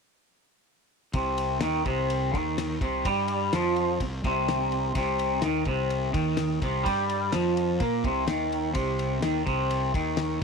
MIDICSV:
0, 0, Header, 1, 4, 480
1, 0, Start_track
1, 0, Key_signature, -3, "minor"
1, 0, Tempo, 475813
1, 1154, Time_signature, 4, 2, 24, 8
1, 10528, End_track
2, 0, Start_track
2, 0, Title_t, "Clean electric guitar"
2, 0, Program_c, 0, 27
2, 1152, Note_on_c, 0, 48, 96
2, 1626, Note_off_c, 0, 48, 0
2, 1632, Note_on_c, 0, 51, 98
2, 1866, Note_off_c, 0, 51, 0
2, 1877, Note_on_c, 0, 48, 101
2, 2369, Note_off_c, 0, 48, 0
2, 2369, Note_on_c, 0, 51, 96
2, 2835, Note_off_c, 0, 51, 0
2, 2842, Note_on_c, 0, 48, 105
2, 3071, Note_off_c, 0, 48, 0
2, 3084, Note_on_c, 0, 55, 96
2, 3552, Note_off_c, 0, 55, 0
2, 3566, Note_on_c, 0, 53, 100
2, 4033, Note_off_c, 0, 53, 0
2, 4054, Note_on_c, 0, 48, 82
2, 4236, Note_off_c, 0, 48, 0
2, 4289, Note_on_c, 0, 48, 104
2, 4988, Note_off_c, 0, 48, 0
2, 5000, Note_on_c, 0, 48, 105
2, 5469, Note_off_c, 0, 48, 0
2, 5487, Note_on_c, 0, 51, 102
2, 5713, Note_off_c, 0, 51, 0
2, 5722, Note_on_c, 0, 48, 99
2, 6181, Note_off_c, 0, 48, 0
2, 6185, Note_on_c, 0, 51, 95
2, 6661, Note_off_c, 0, 51, 0
2, 6684, Note_on_c, 0, 48, 112
2, 6894, Note_on_c, 0, 55, 106
2, 6910, Note_off_c, 0, 48, 0
2, 7375, Note_off_c, 0, 55, 0
2, 7388, Note_on_c, 0, 53, 87
2, 7862, Note_off_c, 0, 53, 0
2, 7868, Note_on_c, 0, 58, 107
2, 8102, Note_off_c, 0, 58, 0
2, 8118, Note_on_c, 0, 48, 99
2, 8346, Note_off_c, 0, 48, 0
2, 8350, Note_on_c, 0, 51, 89
2, 8808, Note_off_c, 0, 51, 0
2, 8812, Note_on_c, 0, 48, 100
2, 9293, Note_off_c, 0, 48, 0
2, 9305, Note_on_c, 0, 51, 90
2, 9537, Note_off_c, 0, 51, 0
2, 9541, Note_on_c, 0, 48, 93
2, 10018, Note_off_c, 0, 48, 0
2, 10037, Note_on_c, 0, 51, 88
2, 10507, Note_off_c, 0, 51, 0
2, 10528, End_track
3, 0, Start_track
3, 0, Title_t, "Fingered electric bass"
3, 0, Program_c, 1, 33
3, 1154, Note_on_c, 1, 36, 92
3, 1601, Note_off_c, 1, 36, 0
3, 1636, Note_on_c, 1, 39, 87
3, 1858, Note_off_c, 1, 39, 0
3, 1876, Note_on_c, 1, 36, 87
3, 2322, Note_off_c, 1, 36, 0
3, 2362, Note_on_c, 1, 39, 92
3, 2805, Note_off_c, 1, 39, 0
3, 2836, Note_on_c, 1, 36, 85
3, 3059, Note_off_c, 1, 36, 0
3, 3079, Note_on_c, 1, 43, 90
3, 3523, Note_off_c, 1, 43, 0
3, 3564, Note_on_c, 1, 41, 93
3, 4006, Note_off_c, 1, 41, 0
3, 4046, Note_on_c, 1, 36, 68
3, 4263, Note_off_c, 1, 36, 0
3, 4281, Note_on_c, 1, 36, 93
3, 4957, Note_off_c, 1, 36, 0
3, 5003, Note_on_c, 1, 36, 92
3, 5444, Note_off_c, 1, 36, 0
3, 5488, Note_on_c, 1, 39, 83
3, 5704, Note_off_c, 1, 39, 0
3, 5718, Note_on_c, 1, 36, 86
3, 6161, Note_off_c, 1, 36, 0
3, 6197, Note_on_c, 1, 39, 108
3, 6640, Note_off_c, 1, 39, 0
3, 6684, Note_on_c, 1, 36, 95
3, 6901, Note_off_c, 1, 36, 0
3, 6923, Note_on_c, 1, 43, 92
3, 7364, Note_off_c, 1, 43, 0
3, 7410, Note_on_c, 1, 41, 78
3, 7847, Note_off_c, 1, 41, 0
3, 7875, Note_on_c, 1, 46, 82
3, 8096, Note_off_c, 1, 46, 0
3, 8112, Note_on_c, 1, 36, 94
3, 8334, Note_off_c, 1, 36, 0
3, 8364, Note_on_c, 1, 39, 75
3, 8804, Note_off_c, 1, 39, 0
3, 8835, Note_on_c, 1, 36, 94
3, 9279, Note_off_c, 1, 36, 0
3, 9322, Note_on_c, 1, 39, 85
3, 9540, Note_off_c, 1, 39, 0
3, 9554, Note_on_c, 1, 36, 92
3, 9999, Note_off_c, 1, 36, 0
3, 10034, Note_on_c, 1, 39, 95
3, 10479, Note_off_c, 1, 39, 0
3, 10528, End_track
4, 0, Start_track
4, 0, Title_t, "Drums"
4, 1144, Note_on_c, 9, 51, 81
4, 1149, Note_on_c, 9, 36, 103
4, 1245, Note_off_c, 9, 51, 0
4, 1249, Note_off_c, 9, 36, 0
4, 1389, Note_on_c, 9, 51, 78
4, 1490, Note_off_c, 9, 51, 0
4, 1620, Note_on_c, 9, 51, 92
4, 1621, Note_on_c, 9, 38, 102
4, 1720, Note_off_c, 9, 51, 0
4, 1721, Note_off_c, 9, 38, 0
4, 1872, Note_on_c, 9, 51, 63
4, 1873, Note_on_c, 9, 36, 91
4, 1973, Note_off_c, 9, 51, 0
4, 1974, Note_off_c, 9, 36, 0
4, 2118, Note_on_c, 9, 51, 80
4, 2219, Note_off_c, 9, 51, 0
4, 2358, Note_on_c, 9, 36, 102
4, 2367, Note_on_c, 9, 51, 69
4, 2459, Note_off_c, 9, 36, 0
4, 2468, Note_off_c, 9, 51, 0
4, 2602, Note_on_c, 9, 51, 95
4, 2603, Note_on_c, 9, 38, 104
4, 2703, Note_off_c, 9, 51, 0
4, 2704, Note_off_c, 9, 38, 0
4, 2836, Note_on_c, 9, 36, 111
4, 2839, Note_on_c, 9, 51, 66
4, 2937, Note_off_c, 9, 36, 0
4, 2940, Note_off_c, 9, 51, 0
4, 3077, Note_on_c, 9, 36, 101
4, 3079, Note_on_c, 9, 51, 92
4, 3178, Note_off_c, 9, 36, 0
4, 3180, Note_off_c, 9, 51, 0
4, 3309, Note_on_c, 9, 51, 72
4, 3410, Note_off_c, 9, 51, 0
4, 3558, Note_on_c, 9, 51, 90
4, 3559, Note_on_c, 9, 38, 107
4, 3659, Note_off_c, 9, 51, 0
4, 3660, Note_off_c, 9, 38, 0
4, 3797, Note_on_c, 9, 51, 60
4, 3897, Note_off_c, 9, 51, 0
4, 4039, Note_on_c, 9, 36, 82
4, 4039, Note_on_c, 9, 51, 82
4, 4140, Note_off_c, 9, 36, 0
4, 4140, Note_off_c, 9, 51, 0
4, 4279, Note_on_c, 9, 36, 102
4, 4281, Note_on_c, 9, 51, 66
4, 4379, Note_off_c, 9, 36, 0
4, 4382, Note_off_c, 9, 51, 0
4, 4524, Note_on_c, 9, 51, 82
4, 4525, Note_on_c, 9, 38, 107
4, 4625, Note_off_c, 9, 51, 0
4, 4626, Note_off_c, 9, 38, 0
4, 4760, Note_on_c, 9, 51, 59
4, 4861, Note_off_c, 9, 51, 0
4, 4994, Note_on_c, 9, 51, 92
4, 4997, Note_on_c, 9, 36, 107
4, 5095, Note_off_c, 9, 51, 0
4, 5098, Note_off_c, 9, 36, 0
4, 5238, Note_on_c, 9, 51, 70
4, 5339, Note_off_c, 9, 51, 0
4, 5466, Note_on_c, 9, 51, 89
4, 5467, Note_on_c, 9, 38, 103
4, 5567, Note_off_c, 9, 51, 0
4, 5568, Note_off_c, 9, 38, 0
4, 5702, Note_on_c, 9, 51, 56
4, 5713, Note_on_c, 9, 36, 89
4, 5803, Note_off_c, 9, 51, 0
4, 5813, Note_off_c, 9, 36, 0
4, 5955, Note_on_c, 9, 51, 76
4, 6056, Note_off_c, 9, 51, 0
4, 6195, Note_on_c, 9, 36, 102
4, 6196, Note_on_c, 9, 51, 67
4, 6296, Note_off_c, 9, 36, 0
4, 6297, Note_off_c, 9, 51, 0
4, 6426, Note_on_c, 9, 51, 94
4, 6427, Note_on_c, 9, 38, 108
4, 6527, Note_off_c, 9, 51, 0
4, 6528, Note_off_c, 9, 38, 0
4, 6677, Note_on_c, 9, 36, 98
4, 6677, Note_on_c, 9, 51, 70
4, 6778, Note_off_c, 9, 36, 0
4, 6778, Note_off_c, 9, 51, 0
4, 6917, Note_on_c, 9, 36, 103
4, 6920, Note_on_c, 9, 51, 91
4, 7018, Note_off_c, 9, 36, 0
4, 7021, Note_off_c, 9, 51, 0
4, 7157, Note_on_c, 9, 51, 71
4, 7258, Note_off_c, 9, 51, 0
4, 7389, Note_on_c, 9, 51, 92
4, 7390, Note_on_c, 9, 38, 93
4, 7490, Note_off_c, 9, 51, 0
4, 7491, Note_off_c, 9, 38, 0
4, 7636, Note_on_c, 9, 51, 67
4, 7737, Note_off_c, 9, 51, 0
4, 7869, Note_on_c, 9, 51, 82
4, 7872, Note_on_c, 9, 36, 100
4, 7970, Note_off_c, 9, 51, 0
4, 7973, Note_off_c, 9, 36, 0
4, 8112, Note_on_c, 9, 36, 106
4, 8115, Note_on_c, 9, 51, 62
4, 8213, Note_off_c, 9, 36, 0
4, 8216, Note_off_c, 9, 51, 0
4, 8348, Note_on_c, 9, 51, 86
4, 8349, Note_on_c, 9, 38, 100
4, 8448, Note_off_c, 9, 51, 0
4, 8450, Note_off_c, 9, 38, 0
4, 8599, Note_on_c, 9, 51, 60
4, 8700, Note_off_c, 9, 51, 0
4, 8823, Note_on_c, 9, 51, 82
4, 8830, Note_on_c, 9, 36, 94
4, 8924, Note_off_c, 9, 51, 0
4, 8931, Note_off_c, 9, 36, 0
4, 9070, Note_on_c, 9, 51, 70
4, 9171, Note_off_c, 9, 51, 0
4, 9305, Note_on_c, 9, 51, 86
4, 9306, Note_on_c, 9, 38, 109
4, 9406, Note_off_c, 9, 51, 0
4, 9407, Note_off_c, 9, 38, 0
4, 9550, Note_on_c, 9, 36, 82
4, 9550, Note_on_c, 9, 51, 63
4, 9650, Note_off_c, 9, 51, 0
4, 9651, Note_off_c, 9, 36, 0
4, 9791, Note_on_c, 9, 51, 78
4, 9892, Note_off_c, 9, 51, 0
4, 10031, Note_on_c, 9, 36, 108
4, 10037, Note_on_c, 9, 51, 72
4, 10131, Note_off_c, 9, 36, 0
4, 10138, Note_off_c, 9, 51, 0
4, 10260, Note_on_c, 9, 51, 96
4, 10261, Note_on_c, 9, 38, 121
4, 10361, Note_off_c, 9, 51, 0
4, 10362, Note_off_c, 9, 38, 0
4, 10528, End_track
0, 0, End_of_file